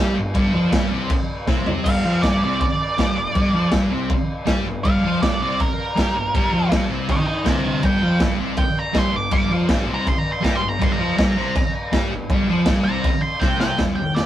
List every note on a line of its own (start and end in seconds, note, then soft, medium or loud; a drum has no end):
0.00 0.15 G2 medium
0.00 0.16 G3 medium
0.00 0.17 G4 loud
0.15 0.33 G1 medium
0.15 0.31 G2 medium
0.34 0.51 G1 loud
0.34 0.53 G2 loud
0.34 0.53 G3 loud
0.34 kick loud
0.34 crash medium
0.52 0.70 F2 loud
0.52 0.72 F3 medium
0.52 0.73 F4 loud
0.71 0.88 G1 loud
0.71 0.90 G2 medium
0.71 0.91 G3 loud
0.71 kick loud
0.71 snare loud
0.71 crash medium
0.89 1.08 C2 loud
0.89 1.09 C3 medium
0.89 1.10 C4 loud
1.10 kick loud
1.10 crash medium
1.47 1.82 C2 medium
1.47 1.85 C3 medium
1.47 1.85 C4 medium
1.47 kick loud
1.47 snare medium
1.66 floor tom loud
1.84 2.03 G1 medium
1.84 2.03 G2 loud
1.84 2.04 G3 loud
1.84 2.21 F5 loud
1.84 kick loud
1.84 crash loud
1.84 crash medium
2.04 2.22 F2 loud
2.04 2.22 F3 medium
2.04 2.23 F4 medium
2.22 2.40 G1 medium
2.22 2.42 G2 medium
2.22 2.42 G3 loud
2.22 2.41 D5 medium
2.22 kick loud
2.22 snare loud
2.22 crash medium
2.42 2.59 C2 loud
2.42 2.61 C3 medium
2.42 2.61 C4 medium
2.42 2.60 D5 loud
2.61 3.70 D5 loud
2.61 kick loud
2.61 crash medium
2.98 3.15 G2 medium
2.98 3.16 G3 medium
2.98 3.17 G4 medium
2.98 kick loud
2.98 snare loud
2.98 crash medium
3.16 3.34 G1 medium
3.16 3.31 G2 medium
3.35 3.52 G1 medium
3.35 3.53 G2 medium
3.35 3.54 G3 loud
3.35 kick loud
3.35 crash medium
3.53 3.71 F2 loud
3.53 3.72 F3 medium
3.53 3.73 F4 loud
3.71 3.90 G1 loud
3.71 3.90 G2 loud
3.71 3.91 G3 loud
3.71 kick loud
3.71 snare loud
3.71 crash medium
3.90 4.09 C2 loud
3.90 4.09 C3 medium
3.90 4.09 C4 loud
4.10 kick loud
4.10 crash medium
4.46 4.64 G2 loud
4.46 4.65 G3 medium
4.46 4.66 G4 medium
4.46 kick loud
4.46 snare loud
4.46 crash medium
4.65 4.83 G1 medium
4.65 4.82 G2 medium
4.84 5.02 G1 medium
4.84 5.03 G2 medium
4.84 5.04 G3 loud
4.84 5.21 F5 loud
4.84 kick loud
4.84 crash medium
5.03 5.21 F2 loud
5.03 5.22 F3 medium
5.03 5.23 F4 medium
5.21 5.39 G1 medium
5.21 5.40 G2 medium
5.21 5.40 G3 loud
5.21 5.41 D5 loud
5.21 kick loud
5.21 snare loud
5.21 crash medium
5.39 5.58 C2 medium
5.39 5.58 C3 medium
5.39 5.60 C4 loud
5.39 5.60 D5 loud
5.60 6.69 A#4 loud
5.60 kick loud
5.60 crash medium
5.95 6.14 G2 loud
5.95 6.14 G3 medium
5.95 6.15 G4 medium
5.95 kick loud
5.95 snare loud
5.95 crash medium
6.14 6.34 G1 medium
6.14 6.30 G2 medium
6.34 6.52 G1 medium
6.34 6.53 G2 medium
6.34 6.53 G3 loud
6.34 kick loud
6.34 crash medium
6.52 6.71 F2 loud
6.52 6.71 F3 medium
6.52 6.72 F4 medium
6.69 6.89 G1 medium
6.69 6.88 G2 medium
6.69 6.89 G3 loud
6.69 kick loud
6.69 snare loud
6.69 crash medium
6.88 7.08 C2 loud
6.88 7.08 C3 loud
6.88 7.08 C4 medium
7.09 7.25 A#4 medium
7.09 7.27 G5 loud
7.09 kick loud
7.09 crash medium
7.27 7.45 A#4 medium
7.27 7.46 G5 medium
7.44 7.81 C2 loud
7.44 7.82 C3 medium
7.44 7.83 C4 medium
7.44 7.63 G5 medium
7.44 7.63 A#5 medium
7.44 kick loud
7.44 snare loud
7.44 crash medium
7.64 7.82 G5 medium
7.64 7.85 A#5 medium
7.82 8.01 G1 loud
7.82 8.01 G2 medium
7.82 8.02 G3 medium
7.82 8.21 G5 loud
7.82 kick loud
7.82 crash medium
8.02 8.20 F2 loud
8.02 8.21 F3 medium
8.02 8.21 F4 medium
8.20 8.38 G1 medium
8.20 8.39 G2 medium
8.20 8.40 G3 loud
8.20 kick loud
8.20 snare loud
8.20 crash medium
8.38 8.57 C2 loud
8.38 8.57 C3 medium
8.38 8.58 C4 loud
8.57 8.79 G5 loud
8.57 kick loud
8.57 crash medium
8.79 8.98 A#5 loud
8.93 9.12 G2 medium
8.93 9.12 G3 medium
8.93 9.13 G4 loud
8.93 kick loud
8.93 snare loud
8.93 crash medium
8.98 9.16 C6 loud
9.12 9.31 G1 medium
9.12 9.28 G2 medium
9.16 9.32 D6 loud
9.31 9.49 G1 medium
9.31 9.50 G2 medium
9.31 9.51 G3 loud
9.31 9.51 D6 loud
9.31 kick loud
9.31 crash medium
9.49 9.68 F2 loud
9.49 9.69 F3 medium
9.49 9.69 F4 loud
9.68 9.86 G1 loud
9.68 9.87 G2 medium
9.68 9.87 G3 medium
9.68 kick loud
9.68 snare loud
9.68 crash medium
9.86 10.06 C2 loud
9.86 10.05 C3 medium
9.86 10.06 C4 loud
9.94 10.07 A#5 loud
10.07 10.18 C6 loud
10.07 kick loud
10.07 crash medium
10.18 10.31 A#5 loud
10.32 10.44 C6 loud
10.41 10.62 G2 loud
10.41 10.61 G3 medium
10.41 10.61 G4 loud
10.41 10.56 A#5 loud
10.41 kick medium
10.41 snare loud
10.41 crash medium
10.56 10.68 C6 loud
10.61 10.80 G1 medium
10.61 10.77 G2 medium
10.69 10.81 A#5 medium
10.79 10.99 G1 loud
10.79 10.98 G2 loud
10.79 10.99 G3 loud
10.79 kick loud
10.79 crash medium
10.84 10.92 C6 medium
10.92 12.01 A#5 loud
10.98 11.17 F2 loud
10.98 11.17 F3 medium
10.98 11.18 F4 medium
11.16 11.36 G1 medium
11.16 11.35 G2 medium
11.16 11.36 G3 loud
11.16 kick loud
11.16 snare loud
11.16 crash medium
11.36 11.54 C2 loud
11.36 11.55 C3 medium
11.36 11.55 C4 loud
11.56 kick loud
11.56 crash medium
11.92 12.10 G2 loud
11.92 12.11 G3 medium
11.92 12.12 G4 medium
11.92 kick loud
11.92 snare loud
11.92 crash medium
12.11 12.28 G1 medium
12.11 12.27 G2 medium
12.29 12.47 G1 loud
12.29 12.49 G2 loud
12.29 12.49 G3 loud
12.29 kick loud
12.29 crash medium
12.49 12.66 F2 loud
12.49 12.67 F3 medium
12.49 12.68 F4 medium
12.66 12.84 G1 loud
12.66 12.86 G2 loud
12.66 12.86 G3 loud
12.66 kick loud
12.66 snare loud
12.66 crash medium
12.85 13.03 C2 loud
12.85 13.04 C3 medium
12.85 13.05 C4 loud
12.85 13.22 A#5 loud
13.04 kick loud
13.04 crash medium
13.22 13.41 C6 loud
13.40 13.77 C2 loud
13.40 13.79 C3 medium
13.40 13.79 C4 medium
13.40 13.59 G5 loud
13.40 kick loud
13.40 snare medium
13.60 13.79 G5 loud
13.60 snare medium
13.78 14.12 G1 medium
13.78 13.95 G2 medium
13.78 13.95 D3 medium
13.78 13.95 G3 medium
13.78 kick loud
13.78 snare loud
13.78 floor tom medium
13.96 14.16 G5 loud
13.96 floor tom medium
14.15 14.26 G1 medium
14.15 14.26 D5 medium
14.15 snare loud
14.15 floor tom medium